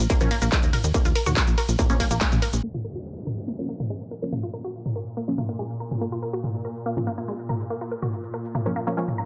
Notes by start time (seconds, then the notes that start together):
0.10 A#3, kick, closed hi-hat, ride, shaker
0.21 A#1 F3 A#3 C#4, closed hi-hat, mid tom, shaker
0.31 A#3, open hi-hat, ride
0.42 A#1 A#3, closed hi-hat, shaker
0.52 G#3, kick, clap, closed hi-hat, ride, shaker
0.63 D#2, closed hi-hat, shaker
0.73 A#4, mid tom, open hi-hat, ride
0.84 D#2, closed hi-hat, shaker
0.94 A#3, kick, closed hi-hat, ride, shaker
1.05 D#2 F4, closed hi-hat, shaker
1.15 A#4, open hi-hat, ride
1.26 D#2 F#4, closed hi-hat, mid tom, shaker
1.37 kick, clap, closed hi-hat, ride, shaker
1.47 A#1, closed hi-hat, shaker
1.58 A#4, open hi-hat, ride
1.69 A#1, closed hi-hat, shaker
1.79 A#3, kick, closed hi-hat, mid tom, ride, shaker
1.90 A#1 F3 A#3 C#4, closed hi-hat, shaker
2.00 A#3, kick, open hi-hat, ride
2.11 A#1 A#3, closed hi-hat, shaker
2.21 G#3, kick, clap, closed hi-hat, ride, shaker
2.32 A#1, closed hi-hat, mid tom, shaker
2.42 A#4, open hi-hat, ride
2.53 A#1, closed hi-hat, shaker
2.63 A#2 A#3, downlifter
2.74 F4, mid tom
2.84 A#4
2.95 F#4
3.27 A#4, mid tom
3.38 shaker
3.48 A#3, shaker
3.59 F3 A#3 C#4
3.69 A#3
3.80 A#3, mid tom, shaker
3.90 G#3, shaker
4.11 A#4
4.22 F3 A#3 C#4, shaker
4.32 A#3, mid tom, shaker
4.43 F4
4.53 A#4
4.64 F#4, shaker
4.75 shaker
4.86 mid tom, shaker
4.96 A#4
5.07 shaker
5.17 A#3, shaker
5.28 F3 A#3 C#4, shaker
5.38 A#3, mid tom
5.49 A#3, shaker
5.59 G#3, shaker
5.70 shaker
5.80 A#4
5.91 mid tom, shaker
6.01 A#3, shaker
6.12 F4, shaker
6.22 A#4
6.33 F#4, shaker
6.44 mid tom, shaker
6.55 shaker
6.65 A#4
6.76 shaker
6.86 A#3, shaker
6.97 F3 A#3 C#4, mid tom, shaker
7.07 A#3
7.18 A#3, shaker
7.28 G#3, shaker
7.39 shaker
7.49 A#4, mid tom
7.60 shaker
7.70 A#3, shaker
7.81 F4, shaker
7.91 A#4
8.02 F#4, mid tom, shaker
8.13 shaker
8.23 shaker
8.34 A#4
8.45 shaker
8.55 A#3, mid tom, shaker
8.66 F3 A#3 C#4, shaker
8.76 A#3
8.87 F3 A#3 C#4, shaker
8.97 F3 G#3 A#3 C#4, shaker
9.08 mid tom, shaker
9.18 A#4